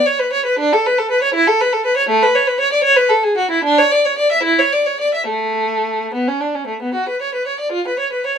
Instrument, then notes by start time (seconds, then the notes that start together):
violin
0.06 C#5
0.19 B4
0.33 C#5
0.46 B4
0.59 D4
0.73 A4
0.86 B4
0.99 A4
1.11 B4
1.23 C#5
1.34 E4
1.47 A4
1.61 B4
1.73 A4
1.86 B4
1.97 C#5
2.09 A3
2.23 B4
2.35 C#5
2.47 B4
2.60 C#5
2.73 D5
2.84 C#5
2.96 B4
3.09 A4
3.23 G#4
3.38 F#4
3.51 E4
3.64 D4
3.78 C#5
3.91 D5
4.05 C#5
4.18 D5
4.32 E5
4.43 E4
4.59 C#5
4.72 D5
4.87 C#5
5.00 D5
5.14 E5
5.28 A3
6.14 B3
6.28 C#4
6.41 D4
6.55 C#4
6.67 A3
6.82 B3
6.94 F#4
7.09 B4
7.22 C#5
7.35 B4
7.47 C#5
7.60 D5
7.72 F4
7.88 B4
7.99 C#5
8.13 B4
8.26 C#5